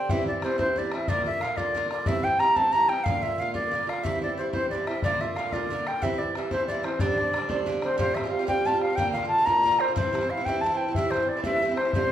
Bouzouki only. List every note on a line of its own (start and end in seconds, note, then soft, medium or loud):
0.10 0.26 G2 medium
0.10 0.27 E3 medium
0.10 0.27 C4 medium
0.10 0.26 E4 medium
0.27 0.42 E3 soft
0.27 0.43 C4 soft
0.27 0.42 E4 soft
0.42 0.58 G2 medium
0.42 0.59 E3 medium
0.42 0.58 C4 medium
0.42 0.57 E4 medium
0.58 0.75 G2 medium
0.58 0.76 E3 soft
0.58 0.76 C4 medium
0.58 0.75 E4 medium
0.76 0.92 G2 medium
0.76 0.92 E3 medium
0.76 0.92 C4 medium
0.76 0.90 E4 medium
0.92 1.08 E3 soft
0.92 1.08 C4 soft
0.92 1.07 E4 soft
1.08 1.25 A#2 medium
1.08 1.25 D3 medium
1.08 1.26 A#3 medium
1.08 1.25 F4 medium
1.26 1.42 D3 soft
1.26 1.42 A#3 medium
1.26 1.41 F4 soft
1.43 1.58 A#2 medium
1.43 1.58 D3 medium
1.43 1.57 A#3 medium
1.43 1.56 F4 medium
1.58 1.73 A#2 medium
1.58 1.74 D3 medium
1.58 1.75 A#3 medium
1.58 1.75 F4 medium
1.74 1.90 A#2 medium
1.74 1.91 D3 medium
1.74 1.91 A#3 medium
1.74 1.90 F4 medium
1.91 2.07 D3 soft
1.91 2.07 A#3 soft
1.91 2.07 F4 medium
2.06 2.24 G2 medium
2.06 2.24 E3 medium
2.06 2.24 C4 medium
2.06 2.22 E4 medium
2.23 2.40 E3 soft
2.23 2.40 C4 medium
2.23 2.39 E4 medium
2.40 2.56 G2 medium
2.40 2.56 E3 medium
2.40 2.55 C4 medium
2.40 2.55 E4 medium
2.56 2.72 G2 medium
2.56 2.73 E3 medium
2.56 2.73 C4 medium
2.56 2.73 E4 medium
2.73 2.89 G2 medium
2.73 2.90 E3 medium
2.73 2.90 C4 medium
2.73 2.87 E4 medium
2.89 3.05 E3 soft
2.89 3.06 C4 soft
2.89 3.05 E4 soft
3.06 3.23 A#2 medium
3.06 3.23 D3 medium
3.06 3.23 A#3 medium
3.06 3.22 F4 medium
3.23 3.39 D3 soft
3.23 3.39 A#3 soft
3.23 3.39 F4 soft
3.38 3.54 A#2 medium
3.38 3.55 D3 soft
3.38 3.54 A#3 medium
3.38 3.53 F4 medium
3.54 3.70 A#2 soft
3.54 3.72 D3 medium
3.54 3.72 A#3 soft
3.54 3.72 F4 medium
3.71 3.88 A#2 medium
3.71 3.89 D3 medium
3.71 3.88 A#3 medium
3.71 3.86 F4 medium
3.87 4.04 D3 soft
3.87 4.05 A#3 soft
3.87 4.04 F4 medium
4.03 4.21 G2 medium
4.03 4.22 E3 medium
4.03 4.22 C4 medium
4.03 4.21 E4 loud
4.22 4.37 E3 soft
4.22 4.38 C4 soft
4.22 4.38 E4 soft
4.37 4.54 G2 medium
4.37 4.53 E3 medium
4.37 4.52 C4 medium
4.37 4.52 E4 medium
4.53 4.70 G2 medium
4.53 4.71 E3 soft
4.53 4.71 C4 medium
4.53 4.71 E4 medium
4.71 4.87 G2 medium
4.71 4.88 E3 medium
4.71 4.87 C4 medium
4.71 4.86 E4 medium
4.87 5.04 E3 soft
4.87 5.04 C4 soft
4.87 5.03 E4 soft
5.04 5.21 A#2 medium
5.04 5.21 D3 medium
5.04 5.21 A#3 medium
5.04 5.20 F4 medium
5.21 5.37 D3 soft
5.21 5.37 A#3 soft
5.21 5.37 F4 soft
5.37 5.53 A#2 medium
5.37 5.53 D3 medium
5.37 5.53 A#3 medium
5.37 5.52 F4 medium
5.53 5.69 A#2 medium
5.53 5.70 D3 medium
5.53 5.71 A#3 soft
5.53 5.70 F4 medium
5.70 5.86 A#2 medium
5.70 5.87 D3 medium
5.70 5.87 A#3 medium
5.70 5.86 F4 medium
5.87 6.02 D3 soft
5.87 6.03 A#3 medium
5.87 6.02 F4 soft
6.02 6.19 G2 medium
6.02 6.20 E3 medium
6.02 6.20 C4 medium
6.02 6.18 E4 medium
6.19 6.36 E3 soft
6.19 6.36 C4 soft
6.19 6.35 E4 soft
6.35 6.51 G2 soft
6.35 6.52 E3 medium
6.35 6.51 C4 medium
6.35 6.50 E4 medium
6.51 6.67 G2 medium
6.51 6.68 E3 medium
6.51 6.69 C4 medium
6.51 6.69 E4 medium
6.68 6.84 G2 medium
6.68 6.85 E3 medium
6.68 6.84 C4 medium
6.68 6.82 E4 medium
6.83 7.00 E3 soft
6.83 7.00 C4 soft
6.83 7.00 E4 soft
7.00 7.18 G2 medium
7.00 7.18 D3 medium
7.00 7.18 C4 medium
7.00 7.16 D4 medium
7.17 7.33 D3 soft
7.17 7.34 C4 soft
7.17 7.34 D4 medium
7.33 7.50 G2 medium
7.33 7.49 D3 medium
7.33 7.49 C4 medium
7.33 7.48 D4 medium
7.49 7.65 G2 medium
7.49 7.66 D3 medium
7.49 7.67 C4 medium
7.49 7.67 D4 medium
7.66 7.83 G2 medium
7.66 7.83 D3 medium
7.66 7.82 C4 medium
7.66 7.80 D4 medium
7.81 7.98 D3 soft
7.81 7.98 C4 soft
7.81 7.98 D4 soft
7.98 8.13 A2 medium
7.98 8.15 G3 medium
7.98 8.16 C4 medium
7.98 8.17 F4 medium
8.15 8.24 A2 medium
8.15 8.24 G3 medium
8.15 8.24 C4 medium
8.15 8.23 F4 medium
8.24 8.41 G3 soft
8.24 8.40 C4 soft
8.24 8.38 F4 medium
8.39 8.47 G3 soft
8.39 8.48 C4 medium
8.39 8.48 F4 medium
8.47 8.64 A2 medium
8.47 8.65 G3 medium
8.47 8.66 C4 medium
8.47 8.66 F4 medium
8.65 8.73 A2 medium
8.65 8.74 G3 medium
8.65 8.74 C4 medium
8.65 8.72 F4 medium
8.73 8.91 G3 soft
8.73 8.91 C4 soft
8.73 8.89 F4 medium
8.90 8.97 G3 soft
8.90 8.98 C4 soft
8.90 8.98 F4 soft
8.97 9.13 A#2 medium
8.97 9.14 D3 medium
8.97 9.15 A#3 medium
8.97 9.16 F4 medium
9.14 9.23 A#2 medium
9.14 9.23 D3 medium
9.14 9.23 A#3 medium
9.14 9.21 F4 medium
9.23 9.40 D3 soft
9.23 9.39 A#3 soft
9.23 9.37 F4 soft
9.38 9.46 D3 soft
9.38 9.47 A#3 medium
9.38 9.47 F4 medium
9.46 9.62 A#2 medium
9.46 9.64 D3 medium
9.46 9.65 A#3 medium
9.46 9.65 F4 medium
9.63 9.72 A#2 medium
9.63 9.73 D3 medium
9.63 9.72 A#3 medium
9.63 9.70 F4 medium
9.71 9.90 D3 medium
9.71 9.88 A#3 soft
9.71 9.87 F4 medium
9.88 9.96 D3 soft
9.88 9.97 A#3 soft
9.88 9.96 F4 soft
9.96 10.11 G2 medium
9.96 10.13 E3 medium
9.96 10.14 C4 medium
9.96 10.14 E4 medium
10.13 10.21 G2 medium
10.13 10.22 E3 medium
10.13 10.21 C4 medium
10.13 10.20 E4 medium
10.21 10.39 E3 soft
10.21 10.38 C4 medium
10.21 10.36 E4 medium
10.37 10.46 E3 soft
10.37 10.47 C4 medium
10.37 10.46 E4 medium
10.46 10.62 G2 medium
10.46 10.63 E3 medium
10.46 10.64 C4 medium
10.46 10.65 E4 medium
10.64 10.71 G2 medium
10.64 10.72 E3 medium
10.64 10.73 C4 medium
10.64 10.71 E4 medium
10.72 10.89 E3 medium
10.72 10.89 C4 medium
10.72 10.87 E4 medium
10.88 10.96 E3 soft
10.88 10.96 C4 soft
10.88 10.96 E4 soft
10.96 11.12 G2 medium
10.96 11.13 E3 medium
10.96 11.14 C4 medium
10.96 11.14 E4 medium
11.13 11.21 G2 medium
11.13 11.21 E3 medium
11.13 11.21 C4 medium
11.13 11.19 E4 medium
11.20 11.38 E3 soft
11.20 11.37 C4 soft
11.20 11.35 E4 soft
11.37 11.44 E3 soft
11.37 11.44 C4 medium
11.37 11.45 E4 soft
11.44 11.61 G2 medium
11.44 11.62 E3 medium
11.44 11.62 C4 medium
11.44 11.63 E4 medium
11.62 11.70 G2 medium
11.62 11.70 E3 medium
11.62 11.70 C4 medium
11.62 11.68 E4 medium
11.69 11.87 E3 soft
11.69 11.85 C4 medium
11.69 11.84 E4 medium
11.85 11.95 E3 soft
11.85 11.94 C4 soft
11.85 11.93 E4 soft
11.94 12.11 A2 medium
11.94 12.12 G3 medium
11.94 12.12 C4 medium
11.94 12.12 F4 medium